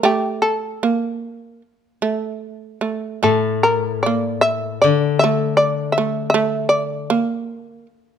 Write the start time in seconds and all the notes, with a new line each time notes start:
0.03 A3 G4
0.42 A4
0.83 A#3
2.02 A3
2.81 A3
3.23 A2 A3 A4
3.63 A#4
4.03 A#3 D5
4.41 E5
4.82 D3 D5
5.19 E5
5.24 A3
5.57 D5
5.92 E5
5.98 A3
6.30 E5
6.34 A3
6.69 D5
7.10 A#3